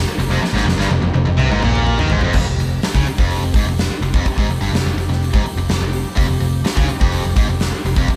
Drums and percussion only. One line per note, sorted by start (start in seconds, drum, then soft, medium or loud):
0.20 open hi-hat medium
0.45 snare medium
0.57 snare medium
0.69 snare medium
0.80 snare medium
0.91 high tom medium
1.03 high tom medium
1.16 high tom medium
1.27 mid tom medium
1.40 mid tom medium
1.52 mid tom medium
1.63 mid tom medium
1.75 mid tom medium
1.87 mid tom medium
1.99 floor tom loud
2.10 floor tom loud
2.21 floor tom loud
2.33 kick medium
2.33 crash loud
2.59 open hi-hat medium
2.82 snare loud
2.82 open hi-hat medium
2.95 kick loud
3.06 open hi-hat medium
3.18 kick loud
3.30 open hi-hat medium
3.54 kick loud
3.54 open hi-hat medium
3.78 snare loud
3.78 open hi-hat medium
4.02 open hi-hat medium
4.14 kick loud
4.25 kick medium
4.25 open hi-hat medium
4.38 kick medium
4.50 open hi-hat medium
4.74 snare loud
4.74 open hi-hat medium
4.98 open hi-hat medium
5.12 snare soft
5.23 open hi-hat medium
5.34 kick loud
5.46 open hi-hat medium
5.69 snare loud
5.69 open hi-hat medium
5.93 open hi-hat medium
6.16 kick loud
6.16 open hi-hat medium
6.42 open hi-hat medium
6.65 snare loud
6.65 open hi-hat medium
6.77 kick loud
6.89 open hi-hat medium
7.01 kick loud
7.12 open hi-hat medium
7.36 kick loud
7.36 open hi-hat medium
7.60 snare loud
7.60 open hi-hat medium
7.85 open hi-hat medium
7.96 kick loud
8.08 kick medium
8.08 open hi-hat medium